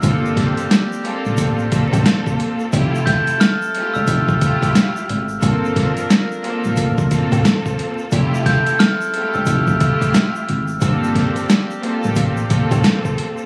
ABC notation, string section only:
X:1
M:4/4
L:1/8
Q:"Swing 16ths" 1/4=89
K:Gdor
V:1 name="String section"
[B,CFA]2 z [B,CFA]2 [B,CFA]3 | [A,EFG]2 z [A,EFG]2 [A,EFG]2 z | [B,CFA]2 z [B,CFA]2 [B,CFA]3 | [A,EFG]2 z [A,EFG]2 [A,EFG]2 z |
[B,CFA]2 z [B,CFA]2 [B,CFA]3 |]